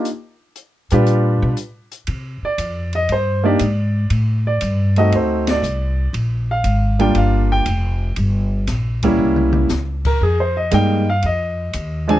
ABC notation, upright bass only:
X:1
M:4/4
L:1/8
Q:"Swing" 1/4=118
K:Bbmix
V:1 name="Upright bass" clef=bass
z3 B,,2 =B,, z2 | [K:Cm] C, z F,,2 G,,2 A,,2 | =A,,2 G,,2 D,,2 C,,2 | B,,,2 A,,,2 G,,,2 F,,,2 |
G,,,2 B,,,2 C,,2 _D,,2 | F,,2 G,,2 F,,2 E,,2 |]